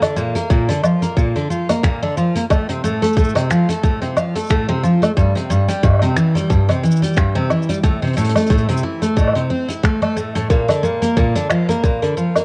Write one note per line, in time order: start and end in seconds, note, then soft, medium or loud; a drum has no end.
0.02 0.15 D3 medium
0.02 closed hi-hat medium
0.02 low woodblock medium
0.17 0.34 A#2 medium
0.17 cabasa medium
0.35 0.49 A#3 medium
0.35 closed hi-hat medium
0.35 cabasa medium
0.50 0.67 A#2 loud
0.50 kick loud
0.50 cabasa medium
0.69 0.82 D3 medium
0.69 closed hi-hat medium
0.83 1.00 F3 medium
0.83 cabasa medium
0.83 low woodblock medium
1.02 1.15 A#3 medium
1.02 closed hi-hat medium
1.02 cabasa medium
1.17 1.34 A#2 medium
1.17 kick medium
1.17 cabasa medium
1.36 1.49 D3 medium
1.36 closed hi-hat soft
1.50 1.67 F3 medium
1.50 cabasa medium
1.69 1.82 A#3 medium
1.69 closed hi-hat medium
1.69 cabasa medium
1.69 low woodblock medium
1.83 2.01 A#2 loud
1.83 finger snap medium
1.83 kick loud
1.83 cabasa medium
2.03 2.16 D3 loud
2.17 2.34 F3 medium
2.17 cabasa medium
2.35 2.44 A#3 medium
2.35 closed hi-hat medium
2.35 cabasa medium
2.50 2.67 A2 loud
2.50 kick loud
2.50 cabasa medium
2.50 low woodblock medium
2.69 2.82 C3 medium
2.69 closed hi-hat medium
2.84 3.00 A2 medium
2.84 cabasa loud
3.02 3.15 A3 loud
3.02 closed hi-hat medium
3.02 cabasa soft
3.07 cabasa soft
3.13 3.34 A2 loud
3.13 kick loud
3.13 cabasa soft
3.18 cabasa soft
3.24 cabasa soft
3.29 cabasa medium
3.35 3.49 C3 loud
3.35 closed hi-hat medium
3.35 low woodblock medium
3.50 3.67 F3 medium
3.50 finger snap medium
3.50 cabasa medium
3.69 3.82 A3 medium
3.69 closed hi-hat medium
3.69 cabasa medium
3.83 4.00 A2 medium
3.83 kick loud
3.83 cabasa medium
4.02 4.15 C3 medium
4.02 closed hi-hat soft
4.17 4.34 F3 medium
4.17 cabasa medium
4.17 low woodblock medium
4.35 4.49 A3 medium
4.35 closed hi-hat medium
4.35 cabasa soft
4.39 cabasa soft
4.44 cabasa soft
4.46 cabasa soft
4.49 4.67 A2 medium
4.49 finger snap medium
4.49 kick loud
4.49 cabasa medium
4.51 cabasa medium
4.68 4.82 C3 loud
4.83 5.00 F3 medium
4.83 cabasa medium
5.02 5.10 A3 medium
5.02 closed hi-hat medium
5.02 cabasa medium
5.02 low woodblock medium
5.17 5.34 G2 loud
5.17 kick loud
5.17 cabasa medium
5.35 5.49 C3 medium
5.35 closed hi-hat medium
5.50 5.67 G2 medium
5.50 cabasa medium
5.68 5.82 G3 loud
5.68 closed hi-hat medium
5.68 cabasa medium
5.83 6.00 G2 loud
5.83 kick loud
5.83 cabasa soft
5.83 low woodblock soft
5.87 low woodblock soft
5.90 low woodblock soft
5.93 low woodblock soft
5.95 low woodblock medium
5.99 6.15 C3 loud
5.99 closed hi-hat medium
5.99 low woodblock medium
6.16 6.34 E3 medium
6.16 finger snap medium
6.16 cabasa medium
6.35 6.49 G3 medium
6.35 closed hi-hat medium
6.35 cabasa medium
6.50 6.67 G2 medium
6.50 kick loud
6.50 cabasa medium
6.69 6.82 C3 medium
6.69 closed hi-hat soft
6.69 low woodblock medium
6.83 7.00 E3 medium
6.83 cabasa medium
6.91 cabasa medium
6.96 cabasa medium
7.02 7.15 G3 medium
7.02 closed hi-hat medium
7.02 cabasa medium
7.07 cabasa soft
7.13 7.33 G2 medium
7.13 kick loud
7.13 cabasa soft
7.17 finger snap medium
7.17 cabasa medium
7.35 7.49 C3 loud
7.50 7.67 E3 medium
7.50 cabasa soft
7.50 low woodblock medium
7.62 cabasa medium
7.69 7.77 G3 medium
7.69 closed hi-hat medium
7.69 cabasa medium
7.73 cabasa medium
7.83 8.00 A2 loud
7.83 kick loud
7.83 cabasa medium
8.02 8.15 C3 medium
8.02 closed hi-hat soft
8.07 closed hi-hat soft
8.13 8.34 A2 medium
8.13 closed hi-hat soft
8.17 closed hi-hat soft
8.17 cabasa medium
8.24 closed hi-hat medium
8.29 closed hi-hat medium
8.36 8.49 A3 medium
8.36 closed hi-hat medium
8.36 cabasa medium
8.36 low woodblock medium
8.40 closed hi-hat soft
8.46 8.67 A2 loud
8.46 closed hi-hat soft
8.46 cabasa medium
8.50 kick loud
8.50 closed hi-hat soft
8.50 cabasa medium
8.57 closed hi-hat soft
8.57 cabasa soft
8.62 closed hi-hat soft
8.69 8.82 C3 loud
8.69 closed hi-hat medium
8.77 cabasa medium
8.83 9.00 E3 medium
9.02 9.15 A3 medium
9.02 closed hi-hat medium
9.02 cabasa medium
9.17 9.34 A2 medium
9.17 kick loud
9.17 cabasa medium
9.17 low woodblock soft
9.21 low woodblock soft
9.24 low woodblock soft
9.27 low woodblock medium
9.29 low woodblock medium
9.33 9.49 C3 medium
9.33 closed hi-hat soft
9.33 low woodblock medium
9.50 9.67 C4 medium
9.69 9.82 E4 medium
9.69 closed hi-hat medium
9.83 10.00 A3 medium
9.83 finger snap medium
9.83 kick loud
9.83 cabasa medium
10.02 10.15 A3 medium
10.02 low woodblock medium
10.16 10.34 A2 medium
10.16 cabasa loud
10.35 10.49 A2 loud
10.35 closed hi-hat medium
10.35 cabasa medium
10.50 10.67 A#2 loud
10.50 10.68 A#4 loud
10.50 kick loud
10.50 cabasa medium
10.69 10.82 D3 medium
10.69 closed hi-hat medium
10.69 low woodblock medium
10.83 11.00 A#2 loud
10.83 10.94 A#4 medium
10.83 cabasa medium
11.02 11.15 A#3 loud
11.02 closed hi-hat medium
11.02 cabasa medium
11.17 11.34 A#2 loud
11.17 11.35 A#4 medium
11.17 kick loud
11.17 cabasa soft
11.35 11.49 D3 loud
11.35 closed hi-hat medium
11.50 11.67 F3 medium
11.50 finger snap medium
11.50 cabasa medium
11.50 low woodblock medium
11.69 11.82 A#3 medium
11.69 11.83 A#4 loud
11.69 closed hi-hat medium
11.69 cabasa medium
11.83 12.00 A#2 medium
11.83 kick medium
11.83 cabasa medium
12.02 12.15 D3 medium
12.02 12.11 A#4 medium
12.02 closed hi-hat soft
12.17 12.34 F3 medium
12.17 cabasa medium
12.35 12.45 A#3 medium
12.35 12.45 A#4 medium
12.35 closed hi-hat medium
12.35 cabasa medium
12.35 low woodblock medium